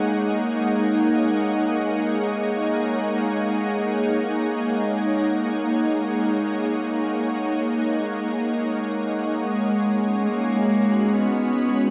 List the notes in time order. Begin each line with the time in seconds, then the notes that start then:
Already playing: G#3 A#3 D#4 G#4 C#5 F#5
9.39 G#3
9.92 C#4
10.27 A#3 F#4
11.14 B3